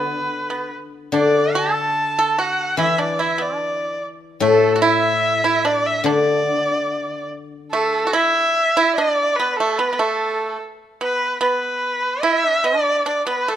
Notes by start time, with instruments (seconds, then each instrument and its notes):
Already playing: guzheng D3 E3 E4 F#4, pipa B3, erhu B4
0.50 pipa B3
1.12 guzheng D3, pipa D4, erhu D5
1.55 pipa A4, erhu A5
2.19 pipa A4
2.38 pipa F#4, erhu F#5
2.77 guzheng E3, pipa E4, erhu E5
2.98 pipa D4, erhu D5
3.19 pipa E4, erhu E5
3.38 pipa D4, erhu D5
4.40 guzheng A2, pipa A3
4.47 erhu A4
4.76 pipa F#4
4.82 pipa E4, erhu E5
5.44 pipa E4
5.65 pipa D4, erhu D5
5.86 erhu E5
6.04 guzheng D3, pipa D4, erhu D5
7.71 pipa A3, erhu A4
8.07 pipa F#4
8.13 pipa E4, erhu E5
8.77 pipa E4
8.96 pipa D4, erhu D5
9.36 pipa B3, erhu B4
9.53 erhu B4
9.57 pipa A3, erhu A4
9.78 pipa B3, erhu B4
9.93 pipa B3
9.99 pipa A3, erhu A4
11.01 pipa B3, erhu B4
11.41 pipa B3, erhu B4
12.23 pipa E4, erhu E5
12.48 pipa D4
12.64 pipa D4, erhu D5
13.06 pipa D4, erhu D5
13.27 pipa B3, erhu B4
13.48 pipa A3, erhu A4